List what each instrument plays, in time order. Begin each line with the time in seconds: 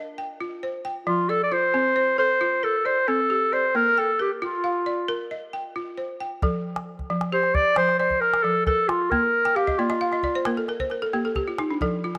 Already playing: balafon A#4 D5 D#5
0.18 balafon G5
0.40 balafon F4
0.63 balafon C5
0.85 balafon G5
1.07 balafon F3, clarinet F4
1.29 clarinet A4, balafon D5
1.44 clarinet D5
1.52 balafon F4, clarinet C5
1.74 balafon C4
1.96 balafon C5
2.18 balafon A4, clarinet C5
2.41 balafon F4
2.63 clarinet A4, balafon A#4
2.85 clarinet C5, balafon D5
3.08 balafon C4, clarinet A4
3.30 balafon G4
3.53 clarinet C5, balafon D5
3.75 balafon A#3, clarinet A#4
3.98 clarinet A4, balafon G5
4.19 clarinet G4, balafon A#4
4.42 balafon F4, clarinet F4
4.64 balafon F5
4.86 balafon D5
5.08 balafon A#4
5.31 balafon D#5
5.53 balafon G5
5.76 balafon F4
5.98 balafon C5
6.20 balafon G5
6.42 balafon F3 A4, calabash thump
6.76 calabash click
6.99 calabash thump
7.10 balafon F3
7.21 calabash click
7.32 balafon G4, clarinet C5
7.43 calabash click
7.55 clarinet D5, calabash thump
7.76 balafon F3, clarinet C5, calabash click
7.89 calabash click
7.99 clarinet C5, balafon D5, calabash click
8.10 calabash thump
8.20 clarinet A#4, calabash click
8.34 calabash click
8.42 balafon F3, clarinet A4
8.66 clarinet A4, balafon A#4, calabash thump, calabash click
8.88 clarinet F4, calabash click
9.10 balafon A#3, clarinet A#4, calabash thump
9.45 balafon G5, calabash click
9.56 clarinet G4, balafon F5
9.67 balafon D#5, calabash thump
9.78 balafon A#3 D5, clarinet F4
9.90 balafon D#5, calabash click
10.01 balafon F5
10.12 balafon D#5, calabash click
10.23 balafon D5, calabash thump
10.35 balafon C5
10.45 balafon A#3 A#4, calabash click
10.57 balafon A4, calabash click
10.68 balafon A#4, calabash click
10.80 balafon C5, calabash thump
10.90 balafon A#4, calabash click
11.02 balafon A4
11.13 balafon A#3 G4
11.25 balafon A4
11.35 balafon G4, calabash thump, calabash click
11.48 balafon F4
11.58 balafon D#4, calabash click
11.71 balafon D4
11.81 balafon F3 A4, calabash thump
12.04 balafon F4
12.15 calabash click